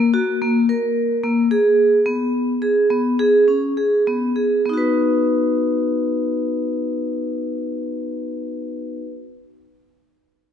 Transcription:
0.14 F#4
0.42 A#3
0.69 A#4
1.24 A#3
1.51 G#4
2.06 B3
2.62 G#4
2.90 B3
3.19 G#4
3.48 C#4
3.77 G#4
4.07 B3
4.36 G#4
4.66 B3 D#4
4.73 F#4
4.77 B4

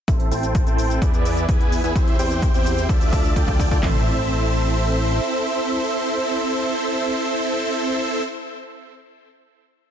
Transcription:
0.08 A1 C4 E4 A4 C5 E5, kick, closed hi-hat, shaker
0.20 closed hi-hat
0.31 A1 C4 E4 A4 C5 G5, open hi-hat, shaker
0.43 closed hi-hat, shaker
0.55 kick, closed hi-hat, shaker
0.67 A1 C4 E4 A4 C5 G5, closed hi-hat, shaker
0.78 open hi-hat, shaker
0.90 closed hi-hat, shaker
1.02 E2 B3 E4 G#4 B4 D5, kick, closed hi-hat, shaker
1.14 closed hi-hat, shaker
1.25 open hi-hat, shaker
1.37 closed hi-hat, shaker
1.49 E2 B3 E4 G#4 B4 G#5, kick, closed hi-hat, shaker
1.61 closed hi-hat
1.72 open hi-hat, shaker
1.84 E2 B3 E4 G#4 B4 G#5, closed hi-hat, shaker
1.95 E2 C4 E4 G4 C5 E5, kick, closed hi-hat, shaker
2.07 closed hi-hat
2.19 E2 C4 E4 G4 C5 G5, open hi-hat, shaker
2.31 closed hi-hat, shaker
2.42 kick, closed hi-hat, shaker
2.54 E2 C4 E4 G4 C5 G5, closed hi-hat, shaker
2.66 open hi-hat, shaker
2.78 closed hi-hat, shaker
2.89 D2 D4 F4 A4 D5 E5, kick, closed hi-hat, shaker
3.01 closed hi-hat, shaker
3.13 kick, open hi-hat, shaker
3.25 closed hi-hat, shaker
3.36 D2 D4 F4 A4 D5 G5, kick, closed hi-hat, shaker
3.48 kick, closed hi-hat
3.60 kick, open hi-hat, shaker
3.71 D2 D4 F4 A4 D5 G5, kick, closed hi-hat, shaker
3.83 A1 C4 E4 A4 C5 E5, kick, clap, floor tom

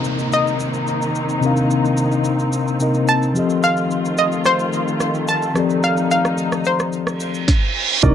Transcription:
Already playing: C3 D#3 A#3 C4 D#4 A#4 D#5 F5, downlifter
0.04 shaker
0.19 shaker
0.32 D#5, shaker
0.47 shaker
0.60 shaker
0.74 shaker
0.87 shaker
1.02 shaker
1.15 shaker
1.29 shaker
1.41 C3 C4 D4 A#4, shaker
1.46 F5
1.50 D#4
1.57 shaker
1.71 shaker
1.85 shaker
1.97 shaker
2.12 shaker
2.24 shaker
2.39 shaker
2.53 shaker
2.68 shaker
2.80 C3 C4 D#4 A#4 D#5, shaker
2.94 shaker
3.08 A5, shaker
3.22 shaker
3.34 D#3 F3 A3 C4 F4 G4 A4, shaker
3.39 D#5
3.50 shaker
3.63 F5, shaker
3.77 shaker
3.91 shaker
4.05 shaker
4.18 D#5, shaker
4.32 shaker
4.45 C5, cross-stick, shaker
4.59 shaker
4.73 shaker
4.88 shaker
5.00 cross-stick, shaker
5.14 shaker
5.28 A5, shaker
5.42 shaker
5.54 F3 C4 D#4 G4 A4, cross-stick, shaker
5.59 D5
5.70 shaker
5.83 F5, shaker
5.97 shaker
6.11 F5, shaker
6.25 cross-stick, shaker
6.38 shaker
6.52 cross-stick, shaker
6.65 C5, shaker
6.79 cross-stick, shaker
6.93 reverse cymbal, shaker
7.07 cross-stick, shaker
7.20 shaker
7.34 shaker
7.48 kick, snare
8.03 C2 C3 D#3 A#3 C4 D4 D#4 A#4 D5, kick, high agogo, shaker
8.10 D#4

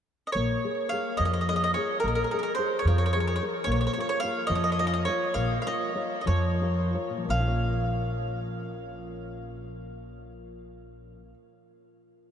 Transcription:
0.27 D#5
0.32 A#1 A#3 C#5
0.64 G#4 A#4 C#5
0.89 G#4 F5
0.93 A#4 C#5
1.17 F2 F3 D#5
1.25 D#5
1.33 D#5
1.41 D#5
1.49 G#4 A#4 C#5 D#5
1.56 D#5
1.64 D#5
1.74 G#4 A#4 C#5
1.78 C#5
2.00 A#1 A#3 A#4
2.08 A#4
2.15 A#4
2.24 A#4
2.31 G#4 A#4 C#5
2.39 A#4
2.43 A#4
2.55 G#4 C5 C#5
2.59 A#4
2.79 C#5
2.85 F2 F3 C#5
2.98 C#5
3.06 C#5
3.13 G#4 A#4 C#5
3.20 C#5
3.27 C#5
3.36 C#5
3.42 G#4 A#4 C#5
3.64 A#1 A#3 C#5
3.72 C#5
3.81 C#5
3.87 C#5
3.93 F4 C#5
3.97 A#4 C#5
4.09 C#5
4.20 F4 A#4 F5
4.25 C#5
4.47 F2 F3 D#5
4.55 D#5
4.64 D#5
4.72 D#5
4.79 F4 A#4 C#5 D#5
4.87 D#5
4.94 D#5
5.05 F4 A#4 C#5
5.34 A#1 A#3 F5
5.62 A#4 F5
5.66 F4 C#5 D#5
5.95 F4 A#4 C#5
6.21 D#5
6.26 F2 F3 C#5
6.61 F4 A#4 C#5
6.94 F4 A#4 C#5
7.10 A#2
7.17 F3
7.25 A#1 A#3
7.30 C#4 F5
7.40 F4
7.47 C#5

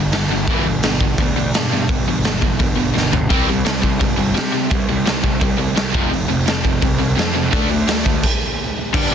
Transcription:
Already playing: G2 D3
0.12 G1 G2 D3, snare, open hi-hat
0.28 G1 G2 D3
0.48 G1 E2 B2 E3, kick, open hi-hat
0.65 G1 E2 B2
0.83 G1 E2 B2, snare, open hi-hat
1.01 E2 B2, kick
1.18 D2 E2 B2, kick, open hi-hat
1.36 E2 B2
1.54 E2 G2 B2, snare, open hi-hat
1.72 E2 B2
1.89 G1 E2 B2, kick, open hi-hat
2.07 G1 E2 B2
2.24 G1 E2 B2, snare, open hi-hat
2.41 G1 E2 B2, kick
2.59 G1 E2 B2, kick, open hi-hat
2.76 E2 B2
2.94 G1 E2 B2, snare
3.12 G1 E2 B2, floor tom
3.29 C2 C3 G3 C4, kick, open hi-hat
3.48 C2 C3 G3
3.65 C2 C3 G3, snare, open hi-hat
3.82 C3 G3, kick
4.00 G1 C3 G3, kick, open hi-hat
4.17 C3 G3
4.34 C3 G3, snare, open hi-hat
4.52 C3 G3
4.71 C2 C3 G3, kick, open hi-hat
4.89 C2 C3 G3
5.06 C2 C3 G3, snare, open hi-hat
5.23 C2 C3 G3, kick
5.41 C2 C3 G3, kick, open hi-hat
5.58 C3 G3
5.76 C2 C3 G3, snare, open hi-hat
5.94 F1 F2 C3 F3, kick
6.11 F1 F2 C3, open hi-hat
6.28 F1 F2 C3
6.47 F1 F2 C3, snare, open hi-hat
6.64 F2 C3, kick
6.82 C2 F2 C3, kick, open hi-hat
6.99 F2 C3
7.17 F2 C3, snare, open hi-hat
7.34 F2 C3
7.52 D2 D3 A3 D4, kick, open hi-hat
7.69 D2 D3 A3
7.88 D2 D3 A3, snare, open hi-hat
8.04 D2 D3 A3, kick
8.23 kick, crash
8.93 G1 G2 D3 G3 D4 D5, kick, crash
9.11 G2 D3

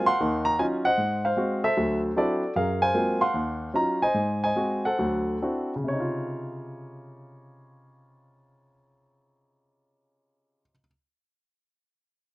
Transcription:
Already playing: G#4 A#4 C5
0.06 F5 F#5 C6
0.20 D#2 D#3
0.45 A#5
0.59 F#3 C#4 D#4 F4 G#5
0.85 C5 D#5 F#5
0.98 G#2
1.25 C5 F5
1.37 G#3 C4 F#4
1.64 A4 C5 E5
1.77 D2 F#3
2.16 F#3 C4 D4 E4 F#4 A4 D5
2.56 F#2 G#4 A#4 F5
2.82 C5 F5 G#5
2.94 F#3 G#3 A#3 C4 F4
3.21 F5 F#5 C6
3.34 D#2
3.74 F#3 C#4 D#4 F4 A#5
4.02 C5 D#5 G#5
4.14 G#2
4.44 C5 D#5 G#5
4.56 G#3 C4 F#4
4.85 A4 C5 F#5
4.99 D2 F#3
5.42 C4 D4 E4 F#4
5.76 C#3
5.84 C3
5.88 D#4 C#5
6.00 F4

